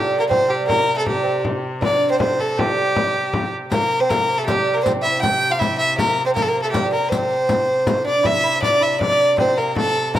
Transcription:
Already playing: viola da gamba C3, lute G3, fiddle G4
0.12 frame drum
0.19 lute A#3, fiddle A#4
0.28 lute C4, fiddle C5, frame drum
0.48 lute G3, fiddle G4, frame drum
0.67 lute A#3, fiddle A#4, frame drum
0.95 lute A3, fiddle A4
1.05 lute G3, fiddle G4, frame drum
1.23 lute C4, frame drum
1.45 frame drum
1.64 frame drum
1.81 lute D4, fiddle D5, frame drum
2.10 lute C4, fiddle C5
2.19 lute C4, fiddle C5, frame drum
2.39 lute A3, fiddle A4, frame drum
2.58 lute G3, fiddle G4, frame drum
2.78 frame drum
2.96 frame drum
3.33 frame drum
3.71 viola da gamba C3, lute A#3, fiddle A#4, riq, frame drum
3.92 frame drum
4.00 lute C4, fiddle C5
4.10 lute A#3, fiddle A#4, riq, frame drum
4.38 lute A3, fiddle A4
4.46 lute G3, fiddle G4, riq, frame drum
4.68 frame drum
4.74 lute A#3, fiddle A#4
4.83 lute C4, fiddle C5, riq, frame drum
5.02 lute E4, fiddle E5
5.06 frame drum
5.21 lute G4, fiddle G5, riq, frame drum
5.50 lute F4, fiddle F5
5.59 lute E4, fiddle E5, riq, frame drum
5.78 fiddle E5, frame drum
5.98 lute A#3, fiddle A#4, riq, frame drum
6.17 frame drum
6.26 lute C4, fiddle C5
6.35 lute A#3, fiddle A#4, riq, frame drum
6.42 fiddle A4
6.48 lute A#3, fiddle A#4
6.62 lute A3, fiddle A4
6.71 lute G3, fiddle G4, riq, frame drum
6.92 lute A#3, fiddle A#4, frame drum
7.09 lute C4, fiddle C5, riq, frame drum
7.30 riq
7.49 riq, frame drum
7.68 frame drum
7.87 riq, frame drum
8.04 lute D4, fiddle D5, frame drum
8.23 viola da gamba C3, lute E4, fiddle E5, frame drum
8.43 lute E4, frame drum
8.61 lute D4, fiddle D5, frame drum
8.80 lute E4, fiddle E5
8.99 lute D4, fiddle D5, frame drum
9.19 frame drum
9.38 lute C4, fiddle C5, frame drum
9.57 lute A#3, fiddle A#4, frame drum
9.75 lute A3, fiddle A4, frame drum
10.14 lute A#3, fiddle A#4, frame drum

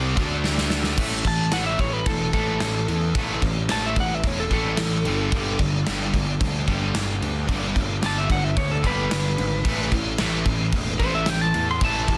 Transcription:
Already playing: picked electric bass C2, distorted electric guitar C3 G3 C4, tonewheel organ C4 G4 D5
0.16 picked electric bass D2, distorted electric guitar D3 A3 D4, tonewheel organ D4 A4 E5, kick, crash
0.44 snare
0.58 snare
0.70 snare
0.84 snare
0.96 picked electric bass A1, distorted electric guitar A2 E3 A3, tonewheel organ A3 E4 B4, kick, crash
1.25 picked electric bass A1, distorted electric guitar A2 E3, lead electric guitar A5, kick, crash
1.52 picked electric bass A1, distorted electric guitar A2 E3 A3, lead electric guitar F#5, snare, crash
1.66 lead electric guitar E5
1.79 picked electric bass A1, distorted electric guitar A2 E3, lead electric guitar C#5, kick, crash
1.93 lead electric guitar B4
2.06 picked electric bass E1, distorted electric guitar A2 E3, lead electric guitar A4, kick, crash
2.33 picked electric bass A1, distorted electric guitar A2 E3 A3, lead electric guitar A4, kick, crash
2.60 picked electric bass A1, distorted electric guitar A2 E3, snare, crash
2.88 picked electric bass E2, distorted electric guitar A2 E3, crash
3.15 picked electric bass A1, distorted electric guitar A2 E3 A3, kick, crash
3.41 picked electric bass A1, distorted electric guitar A2 E3, kick, crash
3.68 picked electric bass A1, distorted electric guitar A2 E3 A3, lead electric guitar A5, snare, crash
3.86 lead electric guitar E5
3.96 picked electric bass A1, distorted electric guitar A2 E3, kick, crash
4.00 lead electric guitar F#5
4.15 lead electric guitar E5
4.23 picked electric bass E1, distorted electric guitar A2 E3, kick, crash
4.27 lead electric guitar C#5
4.40 lead electric guitar A4
4.51 picked electric bass A1, distorted electric guitar A2 E3 A3, lead electric guitar A4, kick, crash
4.77 picked electric bass A1, distorted electric guitar A2 E3, snare, crash
5.05 picked electric bass G1, distorted electric guitar G2 D3 G3, tonewheel organ G3 D4 A4, crash
5.32 picked electric bass G1, distorted electric guitar G2 D3 G3, kick, crash
5.59 picked electric bass G1, distorted electric guitar G2 D3, kick, crash
5.87 picked electric bass G1, distorted electric guitar G2 D3 G3, snare, crash
6.14 picked electric bass G1, distorted electric guitar G2 D3, kick, crash
6.40 picked electric bass D2, distorted electric guitar G2 D3, kick, crash
6.67 picked electric bass G1, distorted electric guitar G2 D3 G3, kick, crash
6.94 picked electric bass G1, distorted electric guitar G2 D3, snare, crash
7.21 picked electric bass D2, distorted electric guitar G2 D3, tonewheel organ B4, crash
7.47 picked electric bass G1, distorted electric guitar G2 D3 G3, kick, crash
7.75 picked electric bass G1, distorted electric guitar G2 D3, kick, crash
8.02 picked electric bass G1, distorted electric guitar G2 D3 G3, lead electric guitar A5, snare, crash
8.18 lead electric guitar E5
8.30 picked electric bass G1, distorted electric guitar G2 D3, lead electric guitar F#5, kick, crash
8.44 lead electric guitar E5
8.56 picked electric bass D2, distorted electric guitar G2 D3, lead electric guitar C#5, kick, crash
8.71 lead electric guitar A4
8.82 picked electric bass G1, distorted electric guitar G2 D3 G3, kick, crash
8.87 lead electric guitar B4
9.10 picked electric bass G1, distorted electric guitar G2 D3, snare, crash
9.38 picked electric bass G#1, distorted electric guitar G2 D3, crash
9.64 picked electric bass A1, distorted electric guitar A2 E3 A3, tonewheel organ A3 E4, kick, crash
9.92 picked electric bass A1, distorted electric guitar A2 E3, kick, crash
10.18 picked electric bass A1, distorted electric guitar A2 E3 A3, snare, crash
10.45 picked electric bass A1, distorted electric guitar A2 E3, kick, crash
10.72 picked electric bass E1, distorted electric guitar A2 E3, kick, crash
10.99 picked electric bass A1, distorted electric guitar A2 E3 A3, lead electric guitar C5, kick, crash
11.15 lead electric guitar E5
11.26 picked electric bass A1, distorted electric guitar A2 E3, lead electric guitar G5, snare, crash
11.41 lead electric guitar A5
11.54 picked electric bass E2, distorted electric guitar A2 E3, crash
11.71 lead electric guitar C6
11.81 picked electric bass A1, distorted electric guitar A2 E3 A3, lead electric guitar A5, kick, crash
12.08 picked electric bass A1, distorted electric guitar A2 E3, kick, crash

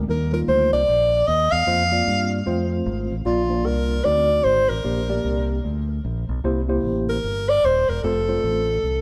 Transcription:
0.08 fingered electric bass D#2, tine electric piano D#3 G3 A#3 D#4 A#4, alto saxophone A#4
0.32 tine electric piano G3 A#3 D#4 F4, alto saxophone A#4
0.48 fingered electric bass D2, alto saxophone C5
0.73 fingered electric bass C2, alto saxophone D5
0.88 fingered electric bass A#1
1.27 fingered electric bass D#2, alto saxophone D#5
1.52 fingered electric bass E2, alto saxophone F5
1.66 fingered electric bass F2, tine electric piano A#3 C4 F4 C5
1.92 tine electric piano A#3 C4 F4 D5
2.07 fingered electric bass G2
2.46 fingered electric bass F2, tine electric piano A3 C4 F4 C5
2.86 fingered electric bass G#1
3.11 fingered electric bass A1
3.25 fingered electric bass A#1, tine electric piano A#2 A#3 D4 F4 D5, alto saxophone F4
3.49 tine electric piano A#3 D4 F4 C5
3.55 tine electric piano D5
3.66 fingered electric bass C2, alto saxophone A#4
4.04 fingered electric bass D2, tine electric piano D3 C4 D#4 F#4 D5, alto saxophone D5
4.44 fingered electric bass G#1, alto saxophone C5
4.69 fingered electric bass A1, alto saxophone A#4
4.84 fingered electric bass A#1, tine electric piano A#2 A#3 D4 G4 D5
5.09 tine electric piano A3 D4 G4 D5
5.14 tine electric piano A#3
5.25 fingered electric bass C2
5.65 fingered electric bass D2
6.05 fingered electric bass A#1
6.29 fingered electric bass B1
6.44 fingered electric bass C2, tine electric piano C3 A#3 E4 G4 C5
6.69 tine electric piano A#3 E4 G4 C5
6.84 fingered electric bass A1
7.09 alto saxophone A#4
7.24 fingered electric bass G1
7.49 alto saxophone D5
7.64 fingered electric bass D#1, alto saxophone C5
7.88 fingered electric bass E1, alto saxophone A#4
8.04 fingered electric bass F1, tine electric piano A3 C4 F4 C5, alto saxophone A4
8.28 tine electric piano G3 C4 F4 C5
8.33 tine electric piano A3
8.44 fingered electric bass A1
8.83 fingered electric bass C2

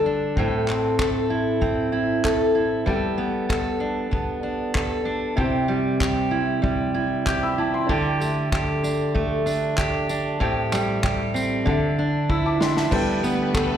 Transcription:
Already playing: steel-string acoustic guitar D3 G3 A4, upright piano D4 A4 G5
0.06 steel-string acoustic guitar D4
0.36 steel-string acoustic guitar A2 A4, upright piano C4 A4 G5, kick
0.68 steel-string acoustic guitar C4, clap
0.99 steel-string acoustic guitar A4, kick, clap
1.30 steel-string acoustic guitar E4
1.61 steel-string acoustic guitar C4, kick
1.92 steel-string acoustic guitar E4
2.24 steel-string acoustic guitar A4, kick, clap
2.55 steel-string acoustic guitar E4
2.86 steel-string acoustic guitar G3 A4, upright piano B3 A4 G5, kick
3.18 steel-string acoustic guitar B3
3.49 steel-string acoustic guitar A4, kick, clap
3.80 steel-string acoustic guitar D4
4.11 steel-string acoustic guitar B3, kick
4.43 steel-string acoustic guitar D4
4.75 steel-string acoustic guitar A4, kick, clap
5.05 steel-string acoustic guitar D4
5.36 steel-string acoustic guitar C3 G4, upright piano E4 C5 G5, kick
5.68 steel-string acoustic guitar G3
6.00 steel-string acoustic guitar G4, kick, clap
6.31 steel-string acoustic guitar E4
6.62 steel-string acoustic guitar G3, kick
6.94 steel-string acoustic guitar E4
7.26 steel-string acoustic guitar G4, upright piano D6 G6, kick, clap
7.43 upright piano B5 E6
7.58 steel-string acoustic guitar E4, upright piano A5 D6
7.74 upright piano G5 C6
7.87 steel-string acoustic guitar D3 G4, upright piano D4 A4 G5, kick
8.20 steel-string acoustic guitar A3, tambourine
8.52 steel-string acoustic guitar G4, kick, clap
8.84 steel-string acoustic guitar D4, tambourine
9.15 steel-string acoustic guitar A3, kick
9.46 steel-string acoustic guitar D4, tambourine
9.78 steel-string acoustic guitar G4, kick, clap
10.09 steel-string acoustic guitar D4, tambourine
10.39 steel-string acoustic guitar A2 G4, upright piano C4 A4 G5, kick
10.72 steel-string acoustic guitar G3, clap, tambourine
11.04 steel-string acoustic guitar G4, kick, clap
11.34 steel-string acoustic guitar C4, tambourine
11.65 steel-string acoustic guitar D3, upright piano D4 A4, kick
11.69 upright piano E5
11.99 steel-string acoustic guitar D4
12.29 steel-string acoustic guitar E4, upright piano B5 E6, kick
12.46 upright piano A5 D6
12.60 steel-string acoustic guitar D4, upright piano G5 C6, snare
12.77 upright piano E5 A5, snare
12.91 string section D3 A3 B3 G4 B4, steel-string acoustic guitar G3, upright piano B3 A4 G5, kick, crash
13.24 steel-string acoustic guitar B3, tambourine
13.54 steel-string acoustic guitar A4, kick, clap

